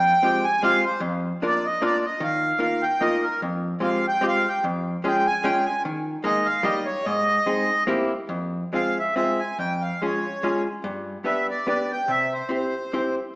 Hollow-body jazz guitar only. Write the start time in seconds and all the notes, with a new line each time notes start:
Already playing: F2
0.23 G#3 C4 F4 G4
0.63 G#3 C4 F4 G4
1.00 F2
1.42 A#3 D4 F4 A#4
1.82 A#3 D4 F4 A#4
2.20 D#3
2.59 A#3 D#4 F4 A#4
3.01 A#3 D#4 F4 A#4
3.42 F2
3.80 G#3 C4 F4 G4
4.21 G#3 C4 F4 G4
4.64 F2
5.04 G#3 C#4 F4 G#4
5.44 G#3 C#4 F4 G#4
5.85 D#3
6.24 G#3 A#3 D#4 G#4
6.63 G3 A#3 D#4 G4
7.06 G#2
7.46 G#3 C4 D#4 G#4
7.87 A#3 C4 E4 G4
8.29 F2
8.73 G#3 C4 F4 G#4
9.16 G#3 C4 F4 G#4
9.59 F2
10.02 G#3 C#4 F4 G#4
10.43 G#3 C#4 F4 G#4
10.84 G2
11.24 B3 D4 G4 B4
11.67 B3 D4 G4 B4
12.08 C3
12.49 C4 E4 G4 C5
12.93 C4 E4 G4 C5